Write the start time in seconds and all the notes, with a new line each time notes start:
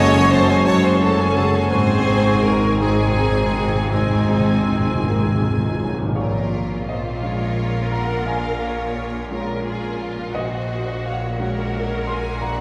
Already playing: F#1 F#2 C#3 F#3 G#3 A3 C#4 F#4 A4 C#5 F#5 G#5 A5
0.00 C#5
0.13 C#4 F#4 G#4 G#5
0.31 G#3 A3 C#4 F#4 A4 C5 A5
0.48 C#4 G#4 C#5 G#5
0.65 F#1 F#2 G#3 A3 C#4 F#4 A4 C#5 F#5 A5
0.83 C#4 G#4 C5 G#5
1.00 A3 C#4 F#4 A4 A5
1.19 C#4 G#4 G#5
1.36 G#3 A3 C#4 F#4 G#4 A4 A5
1.54 C#3 C#4 G#4 A4 G#5
1.71 G#1 G#2 G#3 C4 G#4 C5 G#5
1.81 G#2
1.88 G#2 G#3
1.95 G#2
2.03 G#2 G#3
2.08 G#2 C4 D#4
2.18 G#2
2.26 G#2 D#4
2.34 G#2
2.43 G#3 C4 D#4 G#4 A#4
2.49 G#2
2.56 G#2
2.62 G#2 C5
2.72 G#2
2.79 G#2 G#3 C4 D#4 G#4 D#5 G#5
2.88 G#2
2.96 G#2 G#4
3.04 G#2
3.13 G#2 G#3 D#4
3.17 G#2 C4 D#4
3.29 G#2
3.35 G#2 C4
3.44 G#2
3.52 G#2 G#3 C4 D#4
3.60 G#2
3.67 G#2
3.73 G#2 D#3
3.83 G#2
3.90 G#2 C4 D#4 G#4 G#5
4.00 G#2
4.07 G#2 G#3
4.15 G#2
4.24 G#2
4.28 G#2 G#3 C4 D#4
4.40 G#2
4.48 G#2 D#4
4.55 G#2
4.63 G#2 G#3 C4
4.67 D#4 G#4
4.71 G#2
4.80 G#2
4.86 G#2 C5
4.95 G#2
5.03 G#2 G#3 A#3 C4 D#4 D#5
5.11 G#2
5.18 G#2
5.23 G#2 G#4
5.35 G#2
5.41 G#2 G#3 C4 D#4
5.50 G#2
5.58 G#2 C4
5.67 G#2
5.76 G#2 F#3 G#3
5.80 G#2 G#3 C4 D#4
5.92 G#2
5.97 G#2 A#2 D#3
6.02 G#3
6.06 G#2 A#3
6.11 F3
6.15 A#1 A#2 F4 A#4 C#5
6.88 C5 D#5
7.21 F3 G#3 C#4 A#4 C#5 F5
7.92 F#5 A#5
8.26 A#1 A#2 F5 G#5
8.62 C#5 F5
9.30 G#3 C#4 F4 A#4 C#5
9.65 G#4
10.00 F4
10.17 A#2
10.21 G#3
10.30 A#1 A#2 F#4
10.35 A#1 A#2 F#4 C5 D#5
11.06 C#5 F5
11.39 G#3 C#4 F#4 A#4 C#5 F#5
12.07 G#5 C6
12.41 A#1 A#2 F#4 F#5 A#5